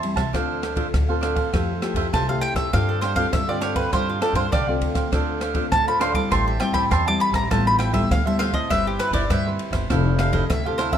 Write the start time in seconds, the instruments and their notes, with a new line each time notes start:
Already playing: nylon-string guitar E3, cavaquinho C5 E5 A5, mandolin C6
0.03 nylon-string guitar G3 C4 E4, ride
0.14 upright bass C2, cavaquinho C5 E5 A5, kick, cross-stick, ride
0.33 upright bass D2, nylon-string guitar D3 C4 F4 A4, cavaquinho D4 A4 C5 F5, kick, cross-stick, ride
0.62 cavaquinho D4 A4 C5 F5, cross-stick, ride
0.76 nylon-string guitar C4 F4 A4, cavaquinho D4 A4 C5 F5, kick, ride
0.94 upright bass D2, nylon-string guitar A2, kick, cross-stick, ride
1.09 nylon-string guitar C4 F4 A4, cavaquinho A4 C5 F5
1.21 cavaquinho D4 A4 C5 F5, cross-stick, ride
1.36 cavaquinho A4 C5 F5, kick, ride
1.52 upright bass F2, nylon-string guitar F3 A3 E4 G4, cavaquinho F4 A4 C5 E5, kick, cross-stick, ride
1.82 nylon-string guitar A3 E4 G4, cavaquinho F4 A4 C5 E5, cross-stick, ride
1.94 upright bass F2, cavaquinho F4 A4 C5 E5, kick, ride
2.13 upright bass C2, nylon-string guitar C3, cavaquinho F4 A4 C5 E5, mandolin A5, kick, cross-stick, ride
2.29 nylon-string guitar A3 E4 G4, cavaquinho A4 C5 E5, mandolin F5
2.41 mandolin G5, ride
2.54 upright bass F2, cavaquinho C5 E5, mandolin E5, kick, cross-stick, ride
2.58 cavaquinho A4
2.73 upright bass G2, nylon-string guitar G3 C4 F4 A4, cavaquinho D4 G4 C5 F5, mandolin F5, kick, cross-stick, ride
2.89 mandolin A4
3.01 cavaquinho D4 G4 C5 F5, mandolin C5, cross-stick, ride
3.16 nylon-string guitar C4 F4 A4, cavaquinho D4 G4 C5 F5, mandolin F5, kick, ride
3.33 upright bass G2, nylon-string guitar D3, mandolin E5, kick, cross-stick, ride
3.48 nylon-string guitar C4 F4 A4, cavaquinho G4 C5 F5, mandolin D5
3.61 cavaquinho D4 G4 C5 F5, mandolin C#5, cross-stick, ride
3.75 cavaquinho G4 C5 F5, mandolin B4, kick, ride
3.92 upright bass G2, nylon-string guitar G3 C4 F4 A4, cavaquinho D4 G4 C5 F5, mandolin C5, kick, cross-stick, ride
4.10 mandolin F4
4.21 nylon-string guitar C4 F4 A4, cavaquinho D4 G4 C5 F5, mandolin A4, cross-stick, ride
4.33 upright bass G2, cavaquinho D4 G4 C5 F5, mandolin C5, kick, ride
4.52 upright bass C2, nylon-string guitar D3, cavaquinho D4 G4 C5 F5, mandolin D5, kick, cross-stick, ride
4.68 nylon-string guitar C4 F4 A4, cavaquinho G4 C5 F5
4.81 upright bass D2, ride
4.94 cavaquinho G4 C5 F5, kick, cross-stick, ride
5.12 upright bass D2, nylon-string guitar D3 C4 F4 A4, cavaquinho D4 A4 C5 F5, kick, cross-stick, ride
5.41 cavaquinho D4 A4 C5 F5, cross-stick, ride
5.54 nylon-string guitar C4 F4 A4, cavaquinho D4 A4 C5 F5, kick, ride
5.72 upright bass D2, nylon-string guitar A2, mandolin A5, kick, cross-stick, ride
5.87 nylon-string guitar C4 F4 A4, cavaquinho A4 C5 F5, mandolin B5
5.99 cavaquinho D4 A4 C5 F5, mandolin C6, cross-stick, ride
6.14 nylon-string guitar G3 C4 E4, cavaquinho A4 C5 F5, mandolin D6, kick, ride
6.30 upright bass A1, nylon-string guitar A2, cavaquinho G4 C5 E5 A5, mandolin C6, kick, cross-stick, ride
6.48 mandolin E5
6.59 nylon-string guitar G3 C4 E4, cavaquinho G4 C5 E5 A5, mandolin G5, cross-stick, ride
6.72 upright bass A1, cavaquinho G4 C5 E5 A5, mandolin B5, kick, ride
6.90 upright bass E2, cavaquinho G4 C5 E5 A5, mandolin C6, kick, cross-stick, ride
7.06 nylon-string guitar G3 C4 E4, cavaquinho C5 E5 A5, mandolin D6
7.20 mandolin B5, ride
7.31 upright bass A1, cavaquinho C5 E5 A5, kick, cross-stick, ride
7.35 mandolin A#5
7.50 upright bass A1, nylon-string guitar A2 G3 B3 E4, cavaquinho F4 A4 C5 E5, mandolin A5, kick, cross-stick, ride
7.67 mandolin B5
7.79 cavaquinho F4 A4 C5 E5, mandolin G5, cross-stick, ride
7.93 nylon-string guitar G3 B3 E4, cavaquinho F4 A4 C5 E5, mandolin E5, kick, ride
8.10 upright bass D2, nylon-string guitar A2, mandolin F5, kick, cross-stick, ride
8.26 nylon-string guitar G3 B3 E4, cavaquinho A4 C5 E5, mandolin E5
8.39 cavaquinho F4 A4 C5 E5, mandolin F5, cross-stick, ride
8.52 nylon-string guitar C4 E4 B4, cavaquinho A4 C5 E5, mandolin D#5, kick, ride
8.69 upright bass G1, nylon-string guitar G3, cavaquinho E4 B4 C5 E5, mandolin E5, kick, cross-stick, ride
8.87 mandolin G4
8.99 nylon-string guitar C4 E4 B4, cavaquinho E4 B4 C5 E5, mandolin B4, cross-stick, ride
9.11 upright bass G1, cavaquinho E4 B4 C5 E5, mandolin D5, kick, ride
9.30 upright bass G2, nylon-string guitar G3, cavaquinho E4 B4 C5 E5, mandolin E5, kick, cross-stick, ride
9.46 nylon-string guitar C4 E4 B4, cavaquinho B4 C5 E5
9.59 ride
9.71 upright bass G1, cavaquinho B4 C5 E5, kick, cross-stick, ride
9.90 upright bass F1, nylon-string guitar F3 C4 E4 A4, cavaquinho E4 A4 C5 F5, kick, cross-stick, ride
10.19 cavaquinho E4 A4 C5 F5, mandolin F5, cross-stick, ride
10.32 nylon-string guitar C4 E4 A4, cavaquinho E4 A4 C5 F5, mandolin D#5, kick, ride
10.50 upright bass D2, nylon-string guitar C3, mandolin E5, kick, cross-stick, ride
10.65 nylon-string guitar C4 E4 A4, mandolin G4, cavaquinho A4 C5 F5
10.78 cavaquinho E4 A4 C5 F5, mandolin C5, cross-stick, ride
10.92 nylon-string guitar F3 C4 D4, cavaquinho A4 C5 F5, mandolin E5, kick, ride